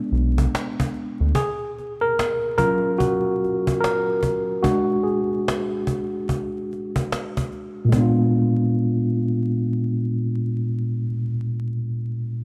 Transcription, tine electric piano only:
0.00 1.37 G#3 soft
0.00 1.36 B3 soft
0.00 1.36 D4 medium
1.35 2.04 G#4 loud
2.01 2.56 A#4 medium
2.58 3.17 F#3 soft
2.58 3.18 C#4 soft
2.58 3.18 F4 medium
2.58 3.00 A#4 medium
2.98 3.84 F#4 medium
3.80 4.66 A#4 medium
4.63 7.88 G#3 medium
4.63 7.88 D4 medium
4.63 7.89 F#4 medium
5.03 6.23 G#4 medium
7.85 10.94 A#2 medium
7.89 10.98 G#3 medium
7.89 11.02 B3 medium
7.97 11.06 D4 medium
8.01 11.10 F4 medium

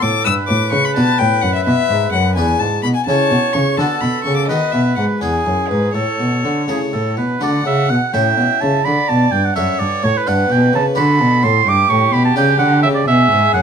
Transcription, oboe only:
0.00 0.26 A4 medium
0.25 2.79 B4 medium
3.07 3.74 C#5 medium
3.78 4.48 A4 medium
4.49 5.20 B4 medium
5.23 5.94 G#4 soft
5.95 6.62 A4 medium
6.70 6.81 G#4 soft
6.93 7.17 A4 soft
7.17 7.41 B4 medium
7.43 7.65 D5 medium
7.66 7.92 E5 medium
7.90 8.12 F#5 medium
8.13 8.63 G5 medium
8.61 8.86 A5 medium
8.85 9.10 B5 medium
9.09 9.33 A5 medium
9.32 9.46 G5 medium
9.45 9.55 F#5 medium
9.56 9.81 E5 medium
9.79 10.05 D5 medium
10.04 10.19 C#5 medium
10.17 10.30 B4 medium
10.28 10.53 F#5 medium
10.52 10.74 G5 medium
10.76 10.86 A5 medium
10.97 11.45 B5 medium
11.44 11.70 C6 medium
11.69 11.91 D6 loud
11.90 12.14 C#6 medium
12.13 12.24 B5 medium
12.25 12.37 A5 medium
12.37 12.58 G5 medium
12.59 12.82 F#5 medium
12.83 12.88 E5 medium
12.95 13.07 D5 medium
13.08 13.53 E5 loud
13.54 13.62 F#5 medium

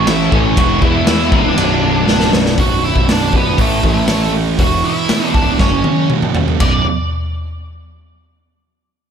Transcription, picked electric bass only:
0.00 0.27 A1 medium
0.32 0.55 A1 medium
0.57 0.80 E1 loud
0.82 1.33 E2 medium
1.32 1.55 C1 loud
1.56 2.03 B0 loud
2.07 2.30 C#1 medium
2.33 2.55 B0 medium
2.58 2.93 B0 medium
2.96 3.30 B0 medium
3.32 3.56 B0 medium
3.58 3.81 A1 medium
3.84 4.55 A1 loud
4.58 4.82 E1 loud
5.34 5.58 C#1 medium
5.59 5.83 F#1 medium
6.60 6.84 B0 medium

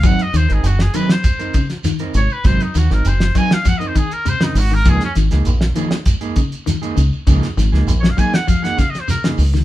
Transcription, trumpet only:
0.06 0.24 F#5 loud
0.23 0.38 D#5 loud
0.37 0.54 C5 medium
0.53 0.68 G#4 medium
0.66 0.83 F#4 medium
0.81 0.97 G#4 medium
0.95 1.13 B4 medium
1.11 1.71 C5 medium
2.16 2.34 C#5 loud
2.32 2.48 B4 loud
2.46 2.64 C5 loud
2.62 2.79 D#4 medium
2.78 2.94 F#4 medium
2.92 3.09 A#4 medium
3.08 3.39 C5 loud
3.37 3.55 G#5 loud
3.54 3.70 F5 loud
3.68 3.80 F#5 loud
3.78 3.89 D#5 medium
3.87 3.99 C5 medium
3.97 4.14 G#4 medium
4.13 4.30 A#4 loud
4.28 4.45 C5 loud
4.44 4.60 D#4 medium
4.58 4.75 F#4 loud
4.74 4.90 A#4 loud
4.89 5.03 G#4 loud
5.05 5.13 C#4 medium
8.00 8.11 C#5 medium
8.10 8.20 F5 medium
8.18 8.36 G#5 loud
8.35 8.50 F#5 medium
8.48 8.65 F5 medium
8.64 8.81 F#5 loud
8.79 8.92 F5 medium
8.90 9.01 D#5 medium
9.00 9.09 C5 medium
9.10 9.28 A#4 medium

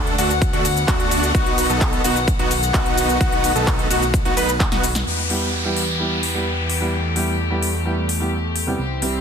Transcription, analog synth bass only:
0.00 0.16 D2 loud
0.18 0.51 D2 medium
0.53 0.86 D2 loud
0.88 1.32 D2 loud
1.35 1.67 B1 loud
1.70 2.02 B1 loud
2.04 2.37 B1 loud
2.39 2.72 B1 loud
2.74 3.18 B1 loud
3.21 3.53 B1 medium
3.55 3.88 B1 loud
3.90 4.23 B1 medium
4.25 4.35 B1 loud
4.37 4.69 B1 loud
4.72 5.04 B1 loud
5.07 8.76 E2 medium
8.79 9.21 C2 medium

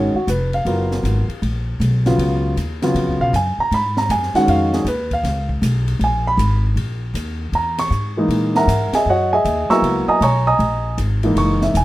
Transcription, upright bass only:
0.00 0.13 G#1 medium
0.14 muted upright bass stroke soft
0.27 0.65 F1 medium
0.65 1.03 F#1 medium
1.03 1.27 G#1 medium
1.28 muted upright bass stroke soft
1.42 1.79 A#1 medium
1.80 2.17 B1 medium
2.18 2.56 C#2 medium
2.57 2.94 D#2 medium
2.94 3.09 F2 medium
3.08 3.19 C#2 medium
3.20 3.32 B1 medium
3.33 3.56 F#2 medium
3.58 muted upright bass stroke soft
3.71 4.08 G#2 medium
4.09 4.33 F#2 medium
4.34 muted upright bass stroke soft
4.47 4.84 F2 medium
4.85 5.22 D#2 medium
5.23 5.61 C#2 medium
5.62 5.99 B1 medium
5.99 6.37 A#1 medium
6.37 6.75 G#1 medium
6.76 7.13 A#1 medium
7.14 7.52 D#2 medium
7.52 7.90 E2 medium
7.90 8.28 G#2 medium
8.28 8.66 A#2 medium
8.67 8.91 G#2 medium
8.92 muted upright bass stroke soft
9.06 9.43 F#2 medium
9.44 9.68 D#2 medium
9.69 muted upright bass stroke soft
9.82 10.06 C#2 medium
10.07 muted upright bass stroke soft
10.21 10.58 B1 medium
10.59 10.96 A#1 medium
10.98 11.35 G#1 medium
11.35 11.73 F#1 medium
11.74 11.85 E1 medium

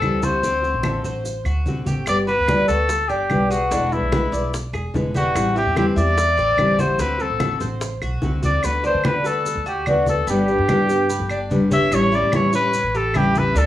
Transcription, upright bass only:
0.02 0.41 C#2 medium
0.43 0.72 D2 medium
0.74 1.03 A1 medium
1.04 1.43 A1 medium
1.45 1.65 D2 medium
1.66 1.84 B1 medium
1.86 2.05 A1 medium
2.07 2.36 G1 medium
2.38 2.67 D2 medium
2.68 3.07 D2 medium
3.10 3.29 G1 medium
3.30 3.69 B1 medium
3.71 4.00 E1 loud
4.02 4.31 B1 medium
4.32 4.71 B1 medium
4.73 4.93 E1 medium
4.94 5.33 E1 medium
5.35 5.65 A1 loud
5.66 5.95 E2 medium
5.96 6.35 E2 medium
6.37 6.57 A1 medium
6.57 6.97 A1 medium
6.98 7.28 D2 medium
7.30 7.59 A1 medium
7.61 8.00 A1 loud
8.02 8.20 B1 medium
8.22 8.41 C2 medium
8.43 8.61 D2 medium
8.64 8.93 D2 medium
8.94 9.53 D3 medium
9.56 10.24 D2 medium
10.27 10.57 G1 medium
10.58 11.17 G2 medium
11.20 11.88 G1 medium
11.91 12.21 A1 loud
12.22 12.81 A2 medium
12.83 13.52 A1 medium
13.55 13.66 D2 loud

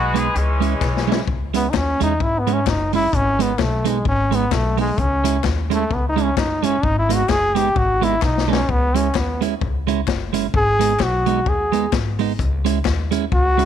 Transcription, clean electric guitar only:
0.14 0.26 G#3 medium
0.14 0.27 B3 loud
0.14 0.27 D#4 medium
0.35 muted clean electric guitar stroke soft
0.60 0.73 G#3 medium
0.60 0.73 C#4 medium
0.60 0.73 E4 medium
1.07 1.19 G#3 medium
1.07 1.20 C#4 medium
1.07 1.20 E4 medium
1.54 1.66 G#3 medium
1.54 1.66 C#4 medium
1.54 1.66 E4 medium
1.74 muted clean electric guitar stroke soft
2.00 2.12 G#3 medium
2.00 2.13 C#4 medium
2.00 2.13 E4 medium
2.21 muted clean electric guitar stroke soft
2.47 2.59 G#3 medium
2.47 2.59 C#4 medium
2.47 2.59 E4 medium
2.93 3.05 G#3 medium
2.93 3.05 C#4 medium
2.93 3.06 E4 medium
3.39 3.51 G#3 medium
3.39 3.51 B3 loud
3.39 3.52 D#4 medium
3.59 muted clean electric guitar stroke soft
3.85 3.97 G#3 medium
3.85 3.97 B3 loud
3.85 3.98 D#4 loud
4.05 muted clean electric guitar stroke soft
4.31 4.43 G#3 medium
4.31 4.44 B3 medium
4.31 4.44 D#4 medium
4.77 4.90 G#3 medium
4.77 4.90 B3 medium
4.77 4.90 D#4 medium
5.24 5.36 G#3 medium
5.24 5.37 C#4 medium
5.24 5.37 E4 medium
5.44 muted clean electric guitar stroke soft
5.70 5.82 G#3 medium
5.70 5.83 C#4 medium
5.70 5.83 E4 loud
5.90 muted clean electric guitar stroke soft
6.16 6.29 G#3 medium
6.16 6.29 C#4 medium
6.16 6.29 E4 loud
6.63 6.75 G#3 medium
6.63 6.76 C#4 medium
6.63 6.76 E4 medium
7.09 7.21 G#3 medium
7.09 7.22 B3 medium
7.09 7.22 D#4 medium
7.29 muted clean electric guitar stroke soft
7.55 7.68 G#3 medium
7.55 7.68 B3 medium
7.55 7.68 D#4 medium
7.75 muted clean electric guitar stroke soft
8.01 8.14 G#3 medium
8.01 8.14 B3 medium
8.01 8.15 D#4 loud
8.48 8.60 G#3 medium
8.48 8.61 B3 medium
8.48 8.61 D#4 medium
8.95 9.07 G#3 medium
8.95 9.07 C#4 medium
8.95 9.07 E4 medium
9.15 muted clean electric guitar stroke soft
9.41 9.53 G#3 medium
9.41 9.53 C#4 medium
9.41 9.54 E4 loud
9.61 muted clean electric guitar stroke soft
9.87 9.99 G#3 medium
9.87 10.00 C#4 medium
9.87 10.00 E4 medium
10.33 10.45 G#3 medium
10.33 10.46 C#4 medium
10.33 10.46 E4 medium
10.79 10.92 G#3 medium
10.79 10.92 B3 medium
10.79 10.93 D#4 medium
11.00 muted clean electric guitar stroke soft
11.26 11.39 G#3 loud
11.26 11.39 B3 medium
11.26 11.39 D#4 loud
11.47 muted clean electric guitar stroke soft
11.72 11.85 G#3 medium
11.72 11.85 B3 medium
11.72 11.86 D#4 medium
12.19 12.31 G#3 medium
12.19 12.32 B3 medium
12.19 12.32 D#4 medium
12.65 12.77 G#3 medium
12.65 12.78 C#4 medium
12.65 12.78 E4 medium
12.85 muted clean electric guitar stroke soft
13.11 13.24 G#3 medium
13.11 13.24 C#4 loud
13.11 13.25 E4 loud
13.32 muted clean electric guitar stroke soft
13.58 13.65 G#3 medium
13.58 13.65 C#4 medium
13.58 13.65 E4 medium

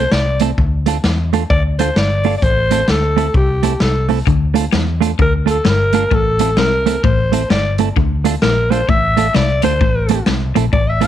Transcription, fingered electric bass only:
0.12 0.51 C2 loud
0.58 0.97 D2 loud
1.04 1.43 E2 loud
1.51 1.90 D2 loud
1.96 2.36 G1 medium
2.43 2.82 A1 loud
2.89 3.28 D2 loud
3.35 3.74 C2 loud
3.82 4.21 C2 loud
4.27 4.66 D2 loud
4.73 5.13 E2 loud
5.19 5.59 D2 loud
5.66 6.05 G1 medium
6.12 6.58 A1 loud
6.58 6.97 C2 medium
7.04 7.43 A1 medium
7.51 7.90 G1 loud
7.97 8.36 D2 loud
8.43 8.82 A#1 medium
8.89 9.28 A1 loud
9.36 9.59 C2 loud
9.65 9.79 D2 loud
9.81 10.20 A1 loud
10.28 10.52 C2 medium
10.57 10.71 A#1 loud
10.73 11.07 A1 loud

